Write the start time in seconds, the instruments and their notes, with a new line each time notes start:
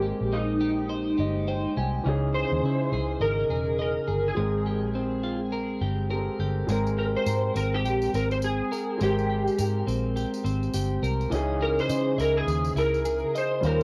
Already playing: fingered electric bass G#1, upright piano G#3 A#3 C4 G4 A#4, clean electric guitar G#3 D#4 C5, electric slide guitar G4
0.02 clean electric guitar G4
0.21 fingered electric bass A#1
0.33 clean electric guitar D#4, electric slide guitar D#4
0.61 clean electric guitar G4
0.90 clean electric guitar C5
1.18 fingered electric bass G1, clean electric guitar G4, upright piano D#5
1.48 clean electric guitar C5, upright piano G5
1.77 fingered electric bass C2, clean electric guitar G4, upright piano G#5
2.04 fingered electric bass C#2, clean electric guitar C#3, upright piano E3 C#4 D#4
2.09 upright piano G#4
2.35 clean electric guitar G#4, electric slide guitar C5
2.52 fingered electric bass D#2
2.63 fingered electric bass C#3, clean electric guitar E4
2.92 fingered electric bass C#2, clean electric guitar G#4
3.20 fingered electric bass G#1, electric slide guitar A#4, clean electric guitar D#5
3.49 fingered electric bass E1, clean electric guitar G#4
3.79 electric slide guitar A#4, clean electric guitar D#5
4.08 fingered electric bass G1, clean electric guitar G#4
4.28 electric slide guitar G#4
4.34 fingered electric bass G#1, upright piano G#3 C4 G5, clean electric guitar G#3
4.39 upright piano A#4
4.66 clean electric guitar G4
4.83 fingered electric bass A#1
4.95 clean electric guitar C4
5.23 clean electric guitar F4
5.52 clean electric guitar A#4
5.81 fingered electric bass G1, clean electric guitar G4
6.10 upright piano G#3 C4 G4 A4, clean electric guitar A#4
6.19 upright piano A#4
6.39 fingered electric bass G1, clean electric guitar G4
6.67 fingered electric bass G#1, upright piano G#3 C4 G5, clean electric guitar G#3 A#4, tambourine
6.72 upright piano A#4
6.87 tambourine
6.98 clean electric guitar G4, electric slide guitar A#4
7.17 electric slide guitar C5
7.26 fingered electric bass G#2, clean electric guitar A#4, tambourine
7.55 fingered electric bass G#1, clean electric guitar C4, electric slide guitar A#4, tambourine
7.74 electric slide guitar G4
7.84 fingered electric bass A#1, clean electric guitar G4, tambourine
8.02 tambourine
8.14 fingered electric bass G#1, clean electric guitar C4, electric slide guitar A#4, tambourine
8.31 electric slide guitar C5, tambourine
8.42 electric slide guitar G#4, tambourine
8.72 clean electric guitar A#4, tambourine
8.98 fingered electric bass G#1, upright piano G#3 C4 G4, clean electric guitar G#3 A#4, tambourine
9.03 electric slide guitar G4, upright piano C5
9.18 tambourine
9.30 clean electric guitar G4
9.47 tambourine
9.58 fingered electric bass G#2, clean electric guitar A#4, tambourine
9.87 fingered electric bass A#1, clean electric guitar C4, tambourine
10.16 clean electric guitar G4, tambourine
10.34 tambourine
10.45 fingered electric bass G#1, clean electric guitar C4, tambourine
10.63 tambourine
10.74 fingered electric bass G1, clean electric guitar G4, tambourine
11.03 fingered electric bass C2, clean electric guitar A#4, tambourine
11.21 tambourine
11.30 fingered electric bass C#2, clean electric guitar C#3 D#5, upright piano E3 C#4 D#4, tambourine
11.35 upright piano G#4
11.61 clean electric guitar G#4, electric slide guitar A#4
11.79 electric slide guitar C5, tambourine
11.89 fingered electric bass C#3, clean electric guitar D#5, tambourine
12.18 fingered electric bass C#2, clean electric guitar E4, electric slide guitar A#4, tambourine
12.37 electric slide guitar G#4
12.47 fingered electric bass D#2, clean electric guitar G#4, tambourine
12.64 tambourine
12.75 fingered electric bass C#2, clean electric guitar E4, electric slide guitar A#4, tambourine
12.94 tambourine
13.05 clean electric guitar G#4, tambourine
13.35 electric slide guitar C5, clean electric guitar D#5, tambourine
13.61 fingered electric bass D#2, clean electric guitar D#3, upright piano G3 C#4 F4, tambourine
13.65 electric slide guitar A#4, clean electric guitar C5, upright piano C5